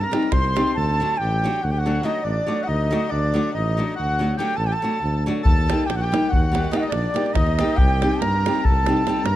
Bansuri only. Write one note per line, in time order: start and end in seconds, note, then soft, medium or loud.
0.03 0.33 A#5 medium
0.32 0.74 C6 medium
0.74 1.19 A5 medium
1.17 1.64 G5 medium
1.62 1.72 F#5 medium
1.71 1.80 G5 medium
1.79 2.06 F#5 medium
2.05 2.24 D#5 medium
2.23 2.65 D5 medium
2.64 2.70 F#5 medium
2.68 3.12 D#5 medium
3.10 3.53 D5 medium
3.53 3.78 D#5 medium
3.98 4.36 F#5 medium
4.40 4.59 G5 medium
4.57 4.68 A5 loud
4.67 4.74 G5 medium
4.73 5.25 A5 medium
5.44 5.88 A5 loud
5.86 5.97 G5 medium
5.95 6.03 F#5 medium
6.01 6.31 G5 loud
6.29 6.70 F#5 medium
6.71 6.78 D#5 loud
6.77 6.88 D#5 medium
6.77 6.81 F#5 medium
6.88 7.36 D5 medium
7.34 7.79 D#5 medium
7.77 8.23 G5 loud
8.21 8.66 A#5 medium
8.64 9.26 A5 medium
9.24 9.36 A#5 loud